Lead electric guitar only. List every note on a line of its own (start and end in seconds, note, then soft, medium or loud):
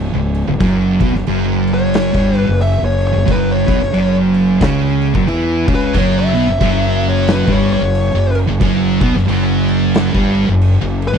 1.74 2.38 C#5 loud
2.38 2.60 B4 loud
2.62 2.83 E5 medium
2.85 3.06 C#5 medium
3.07 3.28 C#5 medium
3.31 3.51 B4 medium
3.51 4.16 C#5 medium
5.75 5.95 B4 loud
5.98 6.18 C#5 loud
6.19 7.04 E5 medium
7.09 7.29 C#5 medium
7.32 7.52 B4 medium
7.52 7.72 C#5 medium
7.73 8.37 C#5 loud
11.08 11.18 B4 loud